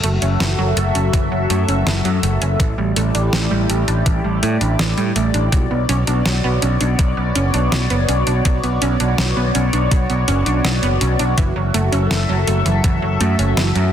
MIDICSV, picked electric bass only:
0, 0, Header, 1, 2, 480
1, 0, Start_track
1, 0, Tempo, 731707
1, 1704, Time_signature, 4, 2, 24, 8
1, 9135, End_track
2, 0, Start_track
2, 0, Title_t, "Picked electric bass"
2, 0, Program_c, 0, 34
2, 24, Note_on_c, 0, 30, 89
2, 114, Note_off_c, 0, 30, 0
2, 144, Note_on_c, 0, 30, 80
2, 234, Note_off_c, 0, 30, 0
2, 263, Note_on_c, 0, 30, 97
2, 353, Note_off_c, 0, 30, 0
2, 384, Note_on_c, 0, 30, 78
2, 474, Note_off_c, 0, 30, 0
2, 502, Note_on_c, 0, 30, 98
2, 593, Note_off_c, 0, 30, 0
2, 623, Note_on_c, 0, 30, 81
2, 713, Note_off_c, 0, 30, 0
2, 745, Note_on_c, 0, 30, 102
2, 834, Note_off_c, 0, 30, 0
2, 864, Note_on_c, 0, 30, 74
2, 954, Note_off_c, 0, 30, 0
2, 983, Note_on_c, 0, 42, 92
2, 1073, Note_off_c, 0, 42, 0
2, 1104, Note_on_c, 0, 30, 78
2, 1194, Note_off_c, 0, 30, 0
2, 1224, Note_on_c, 0, 30, 100
2, 1314, Note_off_c, 0, 30, 0
2, 1344, Note_on_c, 0, 42, 74
2, 1434, Note_off_c, 0, 42, 0
2, 1463, Note_on_c, 0, 30, 89
2, 1553, Note_off_c, 0, 30, 0
2, 1584, Note_on_c, 0, 30, 80
2, 1674, Note_off_c, 0, 30, 0
2, 1704, Note_on_c, 0, 33, 95
2, 1794, Note_off_c, 0, 33, 0
2, 1824, Note_on_c, 0, 33, 73
2, 1913, Note_off_c, 0, 33, 0
2, 1945, Note_on_c, 0, 33, 90
2, 2034, Note_off_c, 0, 33, 0
2, 2065, Note_on_c, 0, 33, 80
2, 2154, Note_off_c, 0, 33, 0
2, 2184, Note_on_c, 0, 33, 101
2, 2274, Note_off_c, 0, 33, 0
2, 2305, Note_on_c, 0, 33, 77
2, 2394, Note_off_c, 0, 33, 0
2, 2425, Note_on_c, 0, 33, 97
2, 2514, Note_off_c, 0, 33, 0
2, 2546, Note_on_c, 0, 33, 80
2, 2635, Note_off_c, 0, 33, 0
2, 2663, Note_on_c, 0, 33, 99
2, 2753, Note_off_c, 0, 33, 0
2, 2786, Note_on_c, 0, 33, 76
2, 2875, Note_off_c, 0, 33, 0
2, 2906, Note_on_c, 0, 45, 94
2, 2995, Note_off_c, 0, 45, 0
2, 3026, Note_on_c, 0, 33, 82
2, 3115, Note_off_c, 0, 33, 0
2, 3145, Note_on_c, 0, 33, 101
2, 3234, Note_off_c, 0, 33, 0
2, 3265, Note_on_c, 0, 45, 74
2, 3354, Note_off_c, 0, 45, 0
2, 3385, Note_on_c, 0, 33, 90
2, 3474, Note_off_c, 0, 33, 0
2, 3505, Note_on_c, 0, 33, 82
2, 3594, Note_off_c, 0, 33, 0
2, 3624, Note_on_c, 0, 35, 96
2, 3713, Note_off_c, 0, 35, 0
2, 3744, Note_on_c, 0, 35, 74
2, 3834, Note_off_c, 0, 35, 0
2, 3865, Note_on_c, 0, 35, 91
2, 3954, Note_off_c, 0, 35, 0
2, 3986, Note_on_c, 0, 35, 82
2, 4075, Note_off_c, 0, 35, 0
2, 4105, Note_on_c, 0, 35, 98
2, 4194, Note_off_c, 0, 35, 0
2, 4227, Note_on_c, 0, 35, 76
2, 4315, Note_off_c, 0, 35, 0
2, 4347, Note_on_c, 0, 35, 97
2, 4435, Note_off_c, 0, 35, 0
2, 4467, Note_on_c, 0, 35, 81
2, 4555, Note_off_c, 0, 35, 0
2, 4584, Note_on_c, 0, 35, 104
2, 4674, Note_off_c, 0, 35, 0
2, 4707, Note_on_c, 0, 35, 75
2, 4795, Note_off_c, 0, 35, 0
2, 4826, Note_on_c, 0, 30, 93
2, 4915, Note_off_c, 0, 30, 0
2, 4946, Note_on_c, 0, 35, 81
2, 5035, Note_off_c, 0, 35, 0
2, 5067, Note_on_c, 0, 35, 99
2, 5155, Note_off_c, 0, 35, 0
2, 5187, Note_on_c, 0, 30, 76
2, 5275, Note_off_c, 0, 30, 0
2, 5306, Note_on_c, 0, 35, 88
2, 5394, Note_off_c, 0, 35, 0
2, 5426, Note_on_c, 0, 35, 79
2, 5515, Note_off_c, 0, 35, 0
2, 5544, Note_on_c, 0, 35, 98
2, 5634, Note_off_c, 0, 35, 0
2, 5667, Note_on_c, 0, 35, 75
2, 5755, Note_off_c, 0, 35, 0
2, 5788, Note_on_c, 0, 35, 89
2, 5875, Note_off_c, 0, 35, 0
2, 5907, Note_on_c, 0, 35, 81
2, 5995, Note_off_c, 0, 35, 0
2, 6026, Note_on_c, 0, 35, 97
2, 6115, Note_off_c, 0, 35, 0
2, 6146, Note_on_c, 0, 35, 75
2, 6234, Note_off_c, 0, 35, 0
2, 6266, Note_on_c, 0, 35, 94
2, 6355, Note_off_c, 0, 35, 0
2, 6385, Note_on_c, 0, 35, 80
2, 6474, Note_off_c, 0, 35, 0
2, 6505, Note_on_c, 0, 35, 103
2, 6594, Note_off_c, 0, 35, 0
2, 6625, Note_on_c, 0, 35, 75
2, 6714, Note_off_c, 0, 35, 0
2, 6745, Note_on_c, 0, 30, 94
2, 6834, Note_off_c, 0, 30, 0
2, 6865, Note_on_c, 0, 35, 81
2, 6954, Note_off_c, 0, 35, 0
2, 6985, Note_on_c, 0, 35, 97
2, 7074, Note_off_c, 0, 35, 0
2, 7105, Note_on_c, 0, 30, 77
2, 7194, Note_off_c, 0, 30, 0
2, 7226, Note_on_c, 0, 35, 92
2, 7315, Note_off_c, 0, 35, 0
2, 7345, Note_on_c, 0, 35, 80
2, 7434, Note_off_c, 0, 35, 0
2, 7585, Note_on_c, 0, 30, 73
2, 7674, Note_off_c, 0, 30, 0
2, 7704, Note_on_c, 0, 30, 90
2, 7794, Note_off_c, 0, 30, 0
2, 7825, Note_on_c, 0, 30, 81
2, 7914, Note_off_c, 0, 30, 0
2, 8065, Note_on_c, 0, 30, 75
2, 8154, Note_off_c, 0, 30, 0
2, 8183, Note_on_c, 0, 30, 94
2, 8273, Note_off_c, 0, 30, 0
2, 8305, Note_on_c, 0, 30, 80
2, 8394, Note_off_c, 0, 30, 0
2, 8424, Note_on_c, 0, 30, 101
2, 8514, Note_off_c, 0, 30, 0
2, 8544, Note_on_c, 0, 30, 73
2, 8634, Note_off_c, 0, 30, 0
2, 8663, Note_on_c, 0, 42, 93
2, 8753, Note_off_c, 0, 42, 0
2, 8783, Note_on_c, 0, 30, 82
2, 8873, Note_off_c, 0, 30, 0
2, 8903, Note_on_c, 0, 30, 100
2, 8993, Note_off_c, 0, 30, 0
2, 9023, Note_on_c, 0, 42, 78
2, 9113, Note_off_c, 0, 42, 0
2, 9135, End_track
0, 0, End_of_file